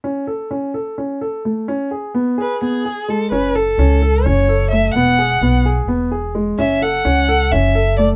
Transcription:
X:1
M:7/8
L:1/8
Q:1/4=128
K:F#m
V:1 name="Violin"
z6 z | z3 B G2 A | B A3 c2 e | f3 z4 |
e f3 e2 d |]
V:2 name="Grand piano"
C A C A C A A, | C G B, G B, G G, | C A C A C A A, | B, G B, G B, G G, |
C A C A C A A, |]
V:3 name="Upright bass" clef=bass
z6 z | z6 z | F,,,2 C,,2 F,,,3 | E,,,2 B,,,2 E,,,3 |
F,,,2 C,,2 F,,,3 |]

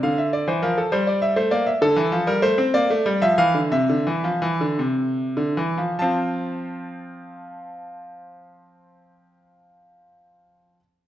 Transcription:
X:1
M:6/8
L:1/16
Q:3/8=53
K:Cdor
V:1 name="Grand piano"
f =e d c B A c d e c d e | [K:F] A3 B c2 d3 e f2 | e12 | [CFa]12- |
[CFa]12 |]
V:2 name="Grand piano" clef=bass
D,3 =E, F,2 G,3 A, B,2 | [K:F] D, E, F, G, A, C B, A, G, F, E, D, | C, D, E, F, E, D, C,3 D, E, F, | F,12- |
F,12 |]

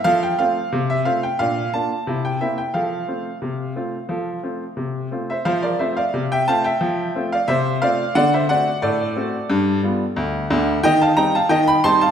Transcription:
X:1
M:2/4
L:1/16
Q:1/4=89
K:F
V:1 name="Upright piano"
f g f3 e f g | f2 a3 g e g | f8- | f6 z [ce] |
[cf] [Bd] [ce] [df]2 [eg] [fa] [eg]- | [eg]3 [df] [ce]2 [df]2 | [d^f] [ce] [df]2 [Ad]4- | [Ad]4- [Ad] z3 |
[K:Cdor] [eg] [fa] [gb] [fa] [eg] [g_c'] [a=c'] [fa] |]
V:2 name="Upright piano"
[F,A]2 [A,CF]2 C,2 [A,CF]2 | [B,,D]2 [B,DF]2 [C,E]2 [B,CE]2 | [F,A]2 [A,CF]2 C,2 [A,CF]2 | [F,A]2 [A,CF]2 C,2 [A,CF]2 |
F,2 [A,CF]2 C,2 [A,CF]2 | F,2 [A,CF]2 C,2 [A,CF]2 | D,2 [A,C^F]2 A,,2 [A,CF]2 | G,,2 [G,=B,F]2 D,,2 [D,,D,]2 |
[K:Cdor] E,2 [G,CE]2 E,2 [G,CE]2 |]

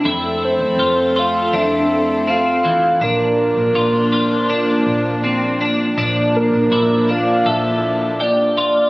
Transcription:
X:1
M:4/4
L:1/16
Q:1/4=81
K:Bblyd
V:1 name="Glockenspiel"
z6 c'8- c'2- | c'2 z12 z2 | z4 d'12 |]
V:2 name="Soft synth lead"
z2 c4 f2 e4 f4 | B12 z4 | z2 B4 f2 e4 d4 |]
V:3 name="Clean electric guitar"
E4 F2 F2 D4 C2 E,2 | D4 F2 F2 D4 C2 D2 | D4 E2 D2 A4 G2 F2 |]
V:4 name="String section"
[A,CA]16 | [F,B,D]16 | [F,B,D]16 |]
V:5 name="Fingered electric bass" clef=bass
F,,3 F,, F,,4 F,,8 | B,,,3 B,,, B,,,6 B,,,6 | B,,,3 B,,, B,,,4 B,,,8 |]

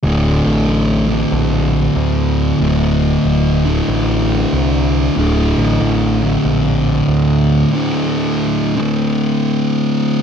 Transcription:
X:1
M:4/4
L:1/8
Q:"Swing" 1/4=94
K:Cmix
V:1 name="Distorted electric guitar" clef=bass
[D,,A,,D,]3 [D,,A,,D,]4- [D,,A,,D,] | [D,,A,,D,]3 [D,,A,,D,]4- [D,,A,,D,] | [D,,A,,D,]3 [D,,A,,D,]4- [D,,A,,D,] | [D,,A,,D,]3 [D,,A,,D,]4- [D,,A,,D,] |]
V:2 name="Picked electric bass" clef=bass
D,,, A,,, A,,,2 B,,,2 D,,2 | D,,,2 D,,,2 A,,,2 C,,2 | D,,, A,,, A,,,2 B,,,2 D,,2 | z8 |]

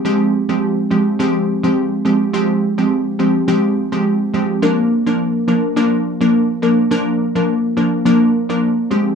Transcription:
X:1
M:4/4
L:1/16
Q:"Swing 16ths" 1/4=105
K:Bbmix
V:1 name="Synth pluck"
[F,A,CG] z2 [F,A,CG] z2 [F,A,CG] z [F,A,CG] z2 [F,A,CG] z2 [F,A,CG] z | [F,A,CG] z2 [F,A,CG] z2 [F,A,CG] z [F,A,CG] z2 [F,A,CG] z2 [F,A,CG] z | [F,B,DB] z2 [F,B,DB] z2 [F,B,DB] z [F,B,DB] z2 [F,B,DB] z2 [F,B,DB] z | [F,B,DB] z2 [F,B,DB] z2 [F,B,DB] z [F,B,DB] z2 [F,B,DB] z2 [F,A,CG] z |]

